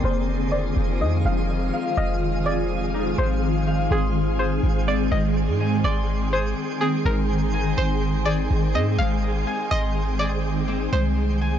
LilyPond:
<<
  \new Staff \with { instrumentName = "Synth texture" } { \time 4/4 \key aes \lydian \tempo 4 = 124 << { <f'' ees''''>1~ | <f'' ees''''>1 | <g'' c'''>1~ | <g'' c'''>1~ |
<g'' c'''>1~ | <g'' c'''>1 | } \\ { aes'1~ | aes'1~ | aes'1~ | aes'1~ |
aes'1~ | aes'1 | } >> }
  \new Staff \with { instrumentName = "Synth pluck" } { \time 4/4 \key aes \lydian c''4 d''4 ees''8 f''8 r4 | ees''4 d''4. c''4. | aes'4 c''4 d''8 ees''8 r4 | d''4 c''4 aes'8 bes'4. |
c''4 d''4 ees''8 f''8 r4 | ees''4 d''4. c''4. | }
  \new Staff \with { instrumentName = "Harp" } { \time 4/4 \key aes \lydian f'''4 aes'4 ees'8 f4 f''8 | f'''4 aes'4 ees'8 f4 f''8 | c'''4 aes'4 c'8 aes4 aes''8 | c'''4 aes'4 c'8 aes4 aes''8 |
c'''4 aes'4 c'8 aes4 aes''8 | c'''4 aes'4 c'8 aes4 aes''8 | }
  \new Staff \with { instrumentName = "Ambient pad" } { \time 4/4 \key aes \lydian << { f'1~ | f'1 | aes'1~ | aes'1~ |
aes'1~ | aes'1 | } \\ { <ees aes c'>1~ | <ees aes c'>1~ | <ees aes c'>1~ | <ees aes c'>1~ |
<ees aes c'>1~ | <ees aes c'>1 | } >> }
  \new Staff \with { instrumentName = "808-style bass" } { \clef bass \time 4/4 \key aes \lydian f,,4. f,,8 f,8 f,,4 r8 | f,,2~ f,,8 aes,,4. | aes,,4. aes,,4 aes,,8. aes,8. | aes,,4. r4 aes,,4. |
aes,,4. aes,,8 aes,8 aes,,4 r8 | aes,,2~ aes,,8 c,4. | }
>>